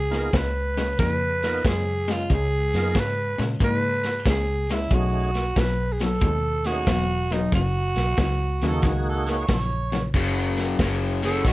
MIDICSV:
0, 0, Header, 1, 7, 480
1, 0, Start_track
1, 0, Key_signature, 6, "major"
1, 0, Tempo, 653595
1, 1691, Time_signature, 4, 2, 24, 8
1, 8466, End_track
2, 0, Start_track
2, 0, Title_t, "Harmonica"
2, 0, Program_c, 0, 22
2, 6360, Note_on_c, 0, 69, 90
2, 6504, Note_off_c, 0, 69, 0
2, 6515, Note_on_c, 0, 66, 77
2, 6661, Note_off_c, 0, 66, 0
2, 6679, Note_on_c, 0, 69, 82
2, 6823, Note_off_c, 0, 69, 0
2, 6838, Note_on_c, 0, 69, 55
2, 6838, Note_on_c, 0, 73, 79
2, 6882, Note_off_c, 0, 69, 0
2, 6982, Note_off_c, 0, 73, 0
2, 7004, Note_on_c, 0, 69, 68
2, 7004, Note_on_c, 0, 73, 98
2, 7049, Note_off_c, 0, 69, 0
2, 7377, Note_off_c, 0, 73, 0
2, 8466, End_track
3, 0, Start_track
3, 0, Title_t, "Tenor saxophone"
3, 0, Program_c, 1, 66
3, 0, Note_on_c, 1, 68, 99
3, 264, Note_on_c, 1, 71, 86
3, 275, Note_off_c, 1, 68, 0
3, 729, Note_off_c, 1, 71, 0
3, 734, Note_on_c, 1, 71, 113
3, 1224, Note_on_c, 1, 68, 94
3, 1235, Note_off_c, 1, 71, 0
3, 1550, Note_on_c, 1, 65, 82
3, 1561, Note_off_c, 1, 68, 0
3, 1701, Note_off_c, 1, 65, 0
3, 1721, Note_on_c, 1, 68, 99
3, 2201, Note_on_c, 1, 71, 101
3, 2212, Note_off_c, 1, 68, 0
3, 2534, Note_off_c, 1, 71, 0
3, 2674, Note_on_c, 1, 71, 111
3, 3115, Note_off_c, 1, 71, 0
3, 3154, Note_on_c, 1, 68, 91
3, 3469, Note_on_c, 1, 64, 82
3, 3480, Note_off_c, 1, 68, 0
3, 3629, Note_on_c, 1, 66, 94
3, 3640, Note_off_c, 1, 64, 0
3, 4110, Note_on_c, 1, 71, 85
3, 4121, Note_off_c, 1, 66, 0
3, 4349, Note_on_c, 1, 68, 74
3, 4360, Note_off_c, 1, 71, 0
3, 4430, Note_on_c, 1, 69, 92
3, 4441, Note_off_c, 1, 68, 0
3, 4894, Note_on_c, 1, 66, 103
3, 4905, Note_off_c, 1, 69, 0
3, 5380, Note_on_c, 1, 63, 86
3, 5391, Note_off_c, 1, 66, 0
3, 5539, Note_off_c, 1, 63, 0
3, 5544, Note_on_c, 1, 66, 96
3, 6950, Note_off_c, 1, 66, 0
3, 8267, Note_on_c, 1, 69, 94
3, 8415, Note_off_c, 1, 69, 0
3, 8428, Note_on_c, 1, 66, 79
3, 8466, Note_off_c, 1, 66, 0
3, 8466, End_track
4, 0, Start_track
4, 0, Title_t, "Tonewheel organ"
4, 0, Program_c, 2, 16
4, 78, Note_on_c, 2, 59, 54
4, 80, Note_on_c, 2, 63, 53
4, 80, Note_on_c, 2, 65, 49
4, 84, Note_on_c, 2, 70, 63
4, 228, Note_off_c, 2, 59, 0
4, 229, Note_off_c, 2, 63, 0
4, 230, Note_off_c, 2, 65, 0
4, 231, Note_off_c, 2, 70, 0
4, 1053, Note_on_c, 2, 65, 57
4, 1056, Note_on_c, 2, 59, 74
4, 1056, Note_on_c, 2, 63, 64
4, 1058, Note_on_c, 2, 70, 74
4, 1196, Note_off_c, 2, 65, 0
4, 1198, Note_off_c, 2, 59, 0
4, 1198, Note_off_c, 2, 63, 0
4, 1199, Note_off_c, 2, 70, 0
4, 2019, Note_on_c, 2, 65, 59
4, 2020, Note_on_c, 2, 59, 72
4, 2020, Note_on_c, 2, 63, 67
4, 2024, Note_on_c, 2, 70, 66
4, 2160, Note_off_c, 2, 59, 0
4, 2160, Note_off_c, 2, 63, 0
4, 2160, Note_off_c, 2, 65, 0
4, 2163, Note_off_c, 2, 70, 0
4, 3607, Note_on_c, 2, 61, 66
4, 3607, Note_on_c, 2, 63, 61
4, 3609, Note_on_c, 2, 57, 66
4, 3611, Note_on_c, 2, 68, 81
4, 3898, Note_off_c, 2, 61, 0
4, 3898, Note_off_c, 2, 63, 0
4, 3899, Note_off_c, 2, 57, 0
4, 3900, Note_off_c, 2, 68, 0
4, 4892, Note_on_c, 2, 61, 60
4, 4894, Note_on_c, 2, 57, 70
4, 4898, Note_on_c, 2, 63, 67
4, 4899, Note_on_c, 2, 68, 82
4, 5039, Note_off_c, 2, 61, 0
4, 5040, Note_off_c, 2, 57, 0
4, 5042, Note_off_c, 2, 63, 0
4, 5042, Note_off_c, 2, 68, 0
4, 6341, Note_on_c, 2, 58, 88
4, 6344, Note_on_c, 2, 63, 76
4, 6344, Note_on_c, 2, 66, 73
4, 6344, Note_on_c, 2, 68, 94
4, 6947, Note_off_c, 2, 58, 0
4, 6948, Note_off_c, 2, 63, 0
4, 6948, Note_off_c, 2, 66, 0
4, 6948, Note_off_c, 2, 68, 0
4, 8466, End_track
5, 0, Start_track
5, 0, Title_t, "Overdriven electric guitar"
5, 0, Program_c, 3, 29
5, 0, Note_on_c, 3, 49, 73
5, 0, Note_on_c, 3, 56, 88
5, 217, Note_off_c, 3, 49, 0
5, 220, Note_off_c, 3, 56, 0
5, 249, Note_on_c, 3, 49, 76
5, 251, Note_on_c, 3, 56, 84
5, 537, Note_off_c, 3, 49, 0
5, 537, Note_off_c, 3, 56, 0
5, 569, Note_on_c, 3, 49, 75
5, 574, Note_on_c, 3, 56, 71
5, 714, Note_off_c, 3, 49, 0
5, 717, Note_off_c, 3, 56, 0
5, 735, Note_on_c, 3, 58, 86
5, 737, Note_on_c, 3, 49, 84
5, 1181, Note_off_c, 3, 58, 0
5, 1182, Note_off_c, 3, 49, 0
5, 1213, Note_on_c, 3, 49, 84
5, 1213, Note_on_c, 3, 56, 88
5, 1499, Note_off_c, 3, 49, 0
5, 1499, Note_off_c, 3, 56, 0
5, 1528, Note_on_c, 3, 49, 60
5, 1530, Note_on_c, 3, 56, 80
5, 1674, Note_off_c, 3, 49, 0
5, 1675, Note_off_c, 3, 56, 0
5, 1688, Note_on_c, 3, 49, 80
5, 1693, Note_on_c, 3, 56, 89
5, 2138, Note_off_c, 3, 49, 0
5, 2141, Note_off_c, 3, 56, 0
5, 2166, Note_on_c, 3, 49, 73
5, 2167, Note_on_c, 3, 56, 92
5, 2457, Note_off_c, 3, 49, 0
5, 2457, Note_off_c, 3, 56, 0
5, 2486, Note_on_c, 3, 49, 72
5, 2492, Note_on_c, 3, 56, 69
5, 2634, Note_off_c, 3, 49, 0
5, 2637, Note_off_c, 3, 56, 0
5, 2654, Note_on_c, 3, 49, 90
5, 2658, Note_on_c, 3, 58, 83
5, 3102, Note_off_c, 3, 49, 0
5, 3104, Note_off_c, 3, 58, 0
5, 3132, Note_on_c, 3, 49, 85
5, 3135, Note_on_c, 3, 56, 84
5, 3420, Note_off_c, 3, 49, 0
5, 3422, Note_off_c, 3, 56, 0
5, 3458, Note_on_c, 3, 49, 61
5, 3463, Note_on_c, 3, 56, 68
5, 3601, Note_off_c, 3, 49, 0
5, 3603, Note_off_c, 3, 56, 0
5, 3604, Note_on_c, 3, 47, 72
5, 3610, Note_on_c, 3, 54, 78
5, 4058, Note_off_c, 3, 47, 0
5, 4061, Note_off_c, 3, 54, 0
5, 4092, Note_on_c, 3, 47, 75
5, 4096, Note_on_c, 3, 54, 78
5, 4381, Note_off_c, 3, 47, 0
5, 4383, Note_off_c, 3, 54, 0
5, 4415, Note_on_c, 3, 47, 69
5, 4417, Note_on_c, 3, 54, 71
5, 4560, Note_off_c, 3, 47, 0
5, 4561, Note_off_c, 3, 54, 0
5, 4570, Note_on_c, 3, 47, 77
5, 4572, Note_on_c, 3, 56, 91
5, 5021, Note_off_c, 3, 47, 0
5, 5022, Note_off_c, 3, 56, 0
5, 5050, Note_on_c, 3, 47, 85
5, 5051, Note_on_c, 3, 54, 92
5, 5340, Note_off_c, 3, 47, 0
5, 5341, Note_off_c, 3, 54, 0
5, 5379, Note_on_c, 3, 47, 59
5, 5379, Note_on_c, 3, 54, 75
5, 5522, Note_off_c, 3, 47, 0
5, 5522, Note_off_c, 3, 54, 0
5, 5542, Note_on_c, 3, 42, 69
5, 5548, Note_on_c, 3, 49, 79
5, 5987, Note_off_c, 3, 42, 0
5, 5990, Note_off_c, 3, 49, 0
5, 6020, Note_on_c, 3, 42, 70
5, 6024, Note_on_c, 3, 49, 85
5, 6305, Note_off_c, 3, 42, 0
5, 6307, Note_off_c, 3, 49, 0
5, 6339, Note_on_c, 3, 49, 79
5, 6340, Note_on_c, 3, 42, 70
5, 6482, Note_off_c, 3, 42, 0
5, 6482, Note_off_c, 3, 49, 0
5, 6500, Note_on_c, 3, 42, 87
5, 6503, Note_on_c, 3, 51, 93
5, 6946, Note_off_c, 3, 42, 0
5, 6947, Note_off_c, 3, 51, 0
5, 6973, Note_on_c, 3, 42, 74
5, 6979, Note_on_c, 3, 49, 86
5, 7261, Note_off_c, 3, 42, 0
5, 7264, Note_off_c, 3, 49, 0
5, 7288, Note_on_c, 3, 42, 67
5, 7294, Note_on_c, 3, 49, 65
5, 7436, Note_off_c, 3, 42, 0
5, 7439, Note_off_c, 3, 49, 0
5, 7452, Note_on_c, 3, 42, 82
5, 7460, Note_on_c, 3, 49, 74
5, 7901, Note_off_c, 3, 42, 0
5, 7904, Note_off_c, 3, 49, 0
5, 7933, Note_on_c, 3, 42, 80
5, 7938, Note_on_c, 3, 49, 81
5, 8220, Note_off_c, 3, 42, 0
5, 8222, Note_off_c, 3, 49, 0
5, 8243, Note_on_c, 3, 42, 64
5, 8248, Note_on_c, 3, 49, 82
5, 8392, Note_off_c, 3, 42, 0
5, 8394, Note_off_c, 3, 49, 0
5, 8411, Note_on_c, 3, 42, 79
5, 8413, Note_on_c, 3, 51, 82
5, 8466, Note_off_c, 3, 42, 0
5, 8466, Note_off_c, 3, 51, 0
5, 8466, End_track
6, 0, Start_track
6, 0, Title_t, "Fingered electric bass"
6, 0, Program_c, 4, 33
6, 0, Note_on_c, 4, 37, 83
6, 218, Note_off_c, 4, 37, 0
6, 243, Note_on_c, 4, 37, 82
6, 698, Note_off_c, 4, 37, 0
6, 728, Note_on_c, 4, 41, 70
6, 1180, Note_off_c, 4, 41, 0
6, 1210, Note_on_c, 4, 42, 76
6, 1661, Note_off_c, 4, 42, 0
6, 1689, Note_on_c, 4, 37, 93
6, 1990, Note_off_c, 4, 37, 0
6, 2010, Note_on_c, 4, 42, 78
6, 2162, Note_off_c, 4, 42, 0
6, 2167, Note_on_c, 4, 44, 81
6, 2469, Note_off_c, 4, 44, 0
6, 2491, Note_on_c, 4, 46, 74
6, 2642, Note_off_c, 4, 46, 0
6, 2646, Note_on_c, 4, 44, 76
6, 3101, Note_off_c, 4, 44, 0
6, 3127, Note_on_c, 4, 37, 86
6, 3581, Note_off_c, 4, 37, 0
6, 3605, Note_on_c, 4, 35, 82
6, 4061, Note_off_c, 4, 35, 0
6, 4083, Note_on_c, 4, 35, 86
6, 4540, Note_off_c, 4, 35, 0
6, 4567, Note_on_c, 4, 39, 85
6, 5022, Note_off_c, 4, 39, 0
6, 5044, Note_on_c, 4, 28, 77
6, 5501, Note_off_c, 4, 28, 0
6, 5528, Note_on_c, 4, 30, 90
6, 5831, Note_off_c, 4, 30, 0
6, 5845, Note_on_c, 4, 35, 79
6, 6001, Note_off_c, 4, 35, 0
6, 6006, Note_on_c, 4, 37, 87
6, 6310, Note_off_c, 4, 37, 0
6, 6328, Note_on_c, 4, 39, 89
6, 6481, Note_off_c, 4, 39, 0
6, 6485, Note_on_c, 4, 37, 70
6, 6941, Note_off_c, 4, 37, 0
6, 6966, Note_on_c, 4, 34, 75
6, 7421, Note_off_c, 4, 34, 0
6, 7447, Note_on_c, 4, 30, 90
6, 7901, Note_off_c, 4, 30, 0
6, 7927, Note_on_c, 4, 30, 71
6, 8380, Note_off_c, 4, 30, 0
6, 8405, Note_on_c, 4, 34, 79
6, 8466, Note_off_c, 4, 34, 0
6, 8466, End_track
7, 0, Start_track
7, 0, Title_t, "Drums"
7, 86, Note_on_c, 9, 42, 53
7, 93, Note_on_c, 9, 38, 33
7, 159, Note_off_c, 9, 42, 0
7, 166, Note_off_c, 9, 38, 0
7, 241, Note_on_c, 9, 42, 81
7, 245, Note_on_c, 9, 36, 82
7, 249, Note_on_c, 9, 38, 100
7, 315, Note_off_c, 9, 42, 0
7, 318, Note_off_c, 9, 36, 0
7, 322, Note_off_c, 9, 38, 0
7, 567, Note_on_c, 9, 42, 57
7, 574, Note_on_c, 9, 38, 36
7, 640, Note_off_c, 9, 42, 0
7, 648, Note_off_c, 9, 38, 0
7, 726, Note_on_c, 9, 42, 73
7, 727, Note_on_c, 9, 36, 84
7, 734, Note_on_c, 9, 38, 30
7, 800, Note_off_c, 9, 42, 0
7, 801, Note_off_c, 9, 36, 0
7, 807, Note_off_c, 9, 38, 0
7, 1048, Note_on_c, 9, 42, 59
7, 1055, Note_on_c, 9, 38, 36
7, 1122, Note_off_c, 9, 42, 0
7, 1129, Note_off_c, 9, 38, 0
7, 1209, Note_on_c, 9, 36, 91
7, 1209, Note_on_c, 9, 42, 74
7, 1216, Note_on_c, 9, 38, 94
7, 1282, Note_off_c, 9, 36, 0
7, 1282, Note_off_c, 9, 42, 0
7, 1290, Note_off_c, 9, 38, 0
7, 1532, Note_on_c, 9, 42, 55
7, 1540, Note_on_c, 9, 38, 30
7, 1606, Note_off_c, 9, 42, 0
7, 1613, Note_off_c, 9, 38, 0
7, 1690, Note_on_c, 9, 36, 69
7, 1695, Note_on_c, 9, 42, 69
7, 1763, Note_off_c, 9, 36, 0
7, 1768, Note_off_c, 9, 42, 0
7, 2010, Note_on_c, 9, 42, 59
7, 2018, Note_on_c, 9, 38, 34
7, 2084, Note_off_c, 9, 42, 0
7, 2091, Note_off_c, 9, 38, 0
7, 2164, Note_on_c, 9, 42, 84
7, 2167, Note_on_c, 9, 36, 81
7, 2171, Note_on_c, 9, 38, 94
7, 2237, Note_off_c, 9, 42, 0
7, 2240, Note_off_c, 9, 36, 0
7, 2245, Note_off_c, 9, 38, 0
7, 2491, Note_on_c, 9, 42, 60
7, 2498, Note_on_c, 9, 38, 31
7, 2564, Note_off_c, 9, 42, 0
7, 2572, Note_off_c, 9, 38, 0
7, 2647, Note_on_c, 9, 36, 86
7, 2650, Note_on_c, 9, 42, 78
7, 2720, Note_off_c, 9, 36, 0
7, 2723, Note_off_c, 9, 42, 0
7, 2964, Note_on_c, 9, 42, 61
7, 2971, Note_on_c, 9, 38, 37
7, 3037, Note_off_c, 9, 42, 0
7, 3044, Note_off_c, 9, 38, 0
7, 3124, Note_on_c, 9, 42, 82
7, 3125, Note_on_c, 9, 36, 84
7, 3132, Note_on_c, 9, 38, 96
7, 3198, Note_off_c, 9, 42, 0
7, 3199, Note_off_c, 9, 36, 0
7, 3205, Note_off_c, 9, 38, 0
7, 3447, Note_on_c, 9, 42, 61
7, 3454, Note_on_c, 9, 38, 30
7, 3520, Note_off_c, 9, 42, 0
7, 3528, Note_off_c, 9, 38, 0
7, 3601, Note_on_c, 9, 42, 77
7, 3605, Note_on_c, 9, 36, 80
7, 3674, Note_off_c, 9, 42, 0
7, 3678, Note_off_c, 9, 36, 0
7, 3924, Note_on_c, 9, 42, 63
7, 3932, Note_on_c, 9, 38, 29
7, 3998, Note_off_c, 9, 42, 0
7, 4005, Note_off_c, 9, 38, 0
7, 4086, Note_on_c, 9, 36, 85
7, 4087, Note_on_c, 9, 42, 81
7, 4094, Note_on_c, 9, 38, 94
7, 4159, Note_off_c, 9, 36, 0
7, 4160, Note_off_c, 9, 42, 0
7, 4168, Note_off_c, 9, 38, 0
7, 4402, Note_on_c, 9, 42, 61
7, 4410, Note_on_c, 9, 38, 32
7, 4476, Note_off_c, 9, 42, 0
7, 4483, Note_off_c, 9, 38, 0
7, 4561, Note_on_c, 9, 42, 80
7, 4565, Note_on_c, 9, 36, 83
7, 4635, Note_off_c, 9, 42, 0
7, 4638, Note_off_c, 9, 36, 0
7, 4880, Note_on_c, 9, 42, 57
7, 4888, Note_on_c, 9, 38, 37
7, 4954, Note_off_c, 9, 42, 0
7, 4961, Note_off_c, 9, 38, 0
7, 5042, Note_on_c, 9, 42, 71
7, 5045, Note_on_c, 9, 36, 85
7, 5050, Note_on_c, 9, 38, 105
7, 5116, Note_off_c, 9, 42, 0
7, 5119, Note_off_c, 9, 36, 0
7, 5123, Note_off_c, 9, 38, 0
7, 5362, Note_on_c, 9, 42, 53
7, 5369, Note_on_c, 9, 38, 36
7, 5435, Note_off_c, 9, 42, 0
7, 5442, Note_off_c, 9, 38, 0
7, 5524, Note_on_c, 9, 42, 71
7, 5525, Note_on_c, 9, 36, 70
7, 5531, Note_on_c, 9, 38, 29
7, 5597, Note_off_c, 9, 42, 0
7, 5599, Note_off_c, 9, 36, 0
7, 5605, Note_off_c, 9, 38, 0
7, 5844, Note_on_c, 9, 42, 53
7, 5851, Note_on_c, 9, 38, 34
7, 5917, Note_off_c, 9, 42, 0
7, 5925, Note_off_c, 9, 38, 0
7, 6001, Note_on_c, 9, 42, 75
7, 6006, Note_on_c, 9, 36, 79
7, 6008, Note_on_c, 9, 38, 110
7, 6074, Note_off_c, 9, 42, 0
7, 6080, Note_off_c, 9, 36, 0
7, 6082, Note_off_c, 9, 38, 0
7, 6327, Note_on_c, 9, 42, 57
7, 6334, Note_on_c, 9, 38, 32
7, 6400, Note_off_c, 9, 42, 0
7, 6408, Note_off_c, 9, 38, 0
7, 6480, Note_on_c, 9, 42, 82
7, 6486, Note_on_c, 9, 36, 84
7, 6487, Note_on_c, 9, 38, 31
7, 6553, Note_off_c, 9, 42, 0
7, 6559, Note_off_c, 9, 36, 0
7, 6561, Note_off_c, 9, 38, 0
7, 6804, Note_on_c, 9, 42, 65
7, 6812, Note_on_c, 9, 38, 36
7, 6878, Note_off_c, 9, 42, 0
7, 6885, Note_off_c, 9, 38, 0
7, 6964, Note_on_c, 9, 42, 85
7, 6967, Note_on_c, 9, 36, 91
7, 6972, Note_on_c, 9, 38, 98
7, 7038, Note_off_c, 9, 42, 0
7, 7041, Note_off_c, 9, 36, 0
7, 7045, Note_off_c, 9, 38, 0
7, 7287, Note_on_c, 9, 42, 64
7, 7294, Note_on_c, 9, 38, 33
7, 7360, Note_off_c, 9, 42, 0
7, 7368, Note_off_c, 9, 38, 0
7, 7446, Note_on_c, 9, 49, 92
7, 7447, Note_on_c, 9, 36, 70
7, 7519, Note_off_c, 9, 49, 0
7, 7520, Note_off_c, 9, 36, 0
7, 7765, Note_on_c, 9, 42, 56
7, 7772, Note_on_c, 9, 38, 32
7, 7839, Note_off_c, 9, 42, 0
7, 7846, Note_off_c, 9, 38, 0
7, 7923, Note_on_c, 9, 42, 80
7, 7925, Note_on_c, 9, 36, 81
7, 7930, Note_on_c, 9, 38, 111
7, 7996, Note_off_c, 9, 42, 0
7, 7999, Note_off_c, 9, 36, 0
7, 8003, Note_off_c, 9, 38, 0
7, 8245, Note_on_c, 9, 42, 62
7, 8252, Note_on_c, 9, 38, 32
7, 8318, Note_off_c, 9, 42, 0
7, 8325, Note_off_c, 9, 38, 0
7, 8407, Note_on_c, 9, 36, 78
7, 8413, Note_on_c, 9, 42, 86
7, 8466, Note_off_c, 9, 36, 0
7, 8466, Note_off_c, 9, 42, 0
7, 8466, End_track
0, 0, End_of_file